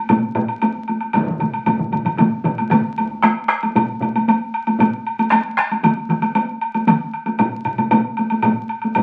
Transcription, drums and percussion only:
0.09 taiko low-mid, taiko high, high woodblock
0.23 taiko high
0.35 taiko low-mid, taiko high, high woodblock
0.48 high woodblock
0.62 taiko high, high woodblock
0.76 taiko high
0.88 taiko high, high woodblock
1.01 taiko high, high woodblock
1.13 taiko, taiko low-mid, taiko mid, taiko high, high woodblock
1.27 taiko low-mid, taiko mid, taiko high
1.39 taiko low-mid, taiko mid, taiko high, high woodblock
1.54 taiko high, high woodblock
1.66 taiko low-mid, taiko mid, taiko high, high woodblock
1.79 taiko low-mid, taiko mid, taiko high
1.92 taiko low-mid, taiko mid, taiko high, high woodblock
2.05 taiko low-mid, taiko mid, taiko high, high woodblock
2.17 taiko low-mid, taiko mid, taiko high, high woodblock
2.44 taiko low-mid, taiko mid, taiko high, high woodblock
2.58 taiko high, high woodblock
2.70 taiko low-mid, taiko mid, taiko high, high woodblock
2.97 taiko, taiko high, high woodblock
3.11 taiko high
3.22 taiko rim, taiko high, high woodblock
3.48 taiko rim, high woodblock
3.63 taiko high, high woodblock
3.75 taiko low-mid, taiko high, high woodblock
4.01 taiko low-mid, taiko high, high woodblock
4.15 taiko high, high woodblock
4.28 taiko high, high woodblock
4.54 high woodblock
4.67 taiko high, high woodblock
4.79 taiko low-mid, taiko high, high woodblock
5.07 high woodblock
5.19 taiko high, high woodblock
5.31 taiko rim, taiko high, high woodblock
5.58 taiko rim, high woodblock
5.71 taiko high, high woodblock
5.83 taiko mid, taiko high, high woodblock
6.09 taiko mid, taiko high, high woodblock
6.22 taiko high, high woodblock
6.35 taiko high, high woodblock
6.61 high woodblock
6.74 taiko high, high woodblock
6.87 taiko mid, taiko high, high woodblock
7.14 high woodblock
7.26 taiko high, high woodblock
7.39 taiko low-mid, taiko high, high woodblock
7.65 taiko low-mid, high woodblock
7.78 taiko low-mid, taiko high, high woodblock
7.91 taiko low-mid, taiko high, high woodblock
8.17 taiko high, high woodblock
8.30 taiko high, high woodblock
8.43 taiko low-mid, taiko high, high woodblock
8.69 high woodblock
8.82 taiko high, high woodblock
8.95 taiko low-mid, taiko high, high woodblock

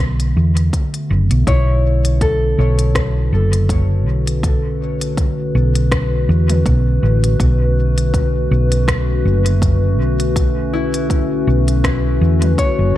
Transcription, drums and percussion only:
0.20 closed hi-hat
0.57 closed hi-hat
0.73 kick, closed hi-hat
0.94 closed hi-hat
1.31 closed hi-hat
1.47 kick, closed hi-hat
2.05 closed hi-hat
2.21 kick, closed hi-hat
2.79 closed hi-hat
2.95 kick, cross-stick, closed hi-hat
3.53 closed hi-hat
3.69 kick, closed hi-hat
4.27 closed hi-hat
4.43 kick, closed hi-hat
5.01 closed hi-hat
5.17 kick, closed hi-hat
5.75 closed hi-hat
5.92 kick, cross-stick, closed hi-hat
6.50 closed hi-hat, mid tom
6.66 kick, closed hi-hat
7.24 closed hi-hat
7.40 kick, closed hi-hat
7.98 closed hi-hat
8.14 kick, closed hi-hat
8.72 closed hi-hat
8.88 kick, cross-stick, closed hi-hat
9.46 closed hi-hat
9.62 kick, closed hi-hat
10.20 closed hi-hat
10.36 kick, closed hi-hat
10.94 closed hi-hat
11.10 kick, closed hi-hat
11.68 closed hi-hat
11.84 kick, cross-stick, closed hi-hat
12.42 closed hi-hat, mid tom
12.58 kick, closed hi-hat

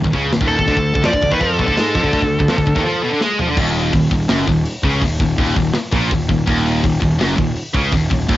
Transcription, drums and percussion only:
0.04 kick
0.13 kick
0.32 snare, open hi-hat
0.41 kick
0.59 kick
0.68 kick, open hi-hat
0.77 kick
0.95 kick
1.04 snare, open hi-hat
1.13 kick
1.23 kick
1.32 kick
1.41 kick, open hi-hat
1.59 kick
1.68 kick
1.77 snare, open hi-hat
1.95 kick
2.04 kick
2.13 kick, open hi-hat
2.22 kick
2.40 kick
2.48 snare, open hi-hat
2.58 kick
2.67 kick
2.76 kick
3.21 snare
3.39 floor tom
3.57 kick, crash
3.75 open hi-hat
3.93 kick, open hi-hat
4.11 kick, open hi-hat
4.29 snare
4.48 kick, open hi-hat
4.65 open hi-hat
4.83 kick, open hi-hat
5.02 kick, open hi-hat
5.20 kick, open hi-hat
5.38 kick, open hi-hat
5.56 kick, open hi-hat
5.73 snare, open hi-hat
5.91 kick, open hi-hat
6.11 kick, open hi-hat
6.29 kick, open hi-hat
6.48 kick, open hi-hat
6.66 open hi-hat
6.84 kick, open hi-hat
7.02 kick, open hi-hat
7.21 snare, open hi-hat
7.38 kick, open hi-hat
7.56 open hi-hat
7.74 kick
7.92 kick, open hi-hat
8.11 kick, open hi-hat
8.29 kick, open hi-hat

